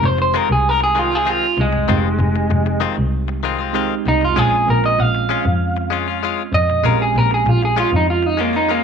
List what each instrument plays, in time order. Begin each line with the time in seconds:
Already playing: tine electric piano G#3 C4 D#4 G4
0.03 double bass F1, clean electric guitar C5, muted clean electric guitar stroke
0.18 clean electric guitar C5, muted clean electric guitar stroke
0.34 clean electric guitar D#3 G#3 C4 F4 A#4
0.49 double bass C2, clean electric guitar G#4, muted clean electric guitar stroke
0.69 clean electric guitar A#4
0.81 clean electric guitar G#4, muted clean electric guitar stroke
0.95 clean electric guitar D#3 G#3 C4 F4
1.11 clean electric guitar G#3 C4 F4 G#4
1.26 clean electric guitar D#3 G#3 C4 F4
1.30 clean electric guitar F4
1.57 double bass C2, muted clean electric guitar stroke
1.61 clean electric guitar G#3
1.73 double bass F1, muted clean electric guitar stroke
1.87 double bass F1, clean electric guitar D#3 G#3 C4 F4, tine electric piano G#3 C4 D#4 G4
2.19 double bass F1, muted clean electric guitar stroke
2.36 muted clean electric guitar stroke
2.50 double bass F1, muted clean electric guitar stroke
2.66 muted clean electric guitar stroke
2.80 clean electric guitar D#3 G#3 C4 F4
2.97 double bass C2, muted clean electric guitar stroke
3.28 muted clean electric guitar stroke
3.43 clean electric guitar D#3 G#3 C4 F4
3.58 clean electric guitar G#3 C4 F4
3.73 clean electric guitar D#3 G#3 C4 F4, tine electric piano G#3 C4 D#4 G4
4.05 double bass C2, clean electric guitar D#4, muted clean electric guitar stroke
4.21 double bass F1, clean electric guitar F4, muted clean electric guitar stroke
4.34 double bass A#1, tine electric piano G#3 C4 C#4 F4, clean electric guitar G#3 C#4 F4
4.38 clean electric guitar G#4
4.67 double bass A#1, clean electric guitar A#4, muted clean electric guitar stroke
4.84 clean electric guitar D#5, muted clean electric guitar stroke
4.98 double bass A#1, clean electric guitar F5, muted clean electric guitar stroke
5.15 muted clean electric guitar stroke
5.29 clean electric guitar G#3 C#4 F4
5.45 double bass F2, muted clean electric guitar stroke
5.77 muted clean electric guitar stroke
5.90 clean electric guitar G#3 C#4 F4
6.08 clean electric guitar C#4 F4
6.23 clean electric guitar G#3 C#4 F4
6.52 double bass F2, clean electric guitar D#5, muted clean electric guitar stroke
6.69 double bass A#1, muted clean electric guitar stroke
6.83 double bass A#1, tine electric piano G#3 C4 C#4 G4, clean electric guitar G#3 C#4 F4 A#4
7.02 clean electric guitar G#4
7.15 double bass A#1, clean electric guitar A#4, muted clean electric guitar stroke
7.31 clean electric guitar G#4, muted clean electric guitar stroke
7.45 double bass A#1, clean electric guitar F4, muted clean electric guitar stroke
7.62 clean electric guitar G#4, muted clean electric guitar stroke
7.76 clean electric guitar G#3 C#4 F4
7.92 double bass F2, muted clean electric guitar stroke
7.96 clean electric guitar D#4
8.10 clean electric guitar F4
8.23 clean electric guitar D#4, muted clean electric guitar stroke
8.37 clean electric guitar G#3 A#3 C#4 F4
8.53 clean electric guitar C#4 D#4 F4
8.69 clean electric guitar G#3 A#3 C#4 F4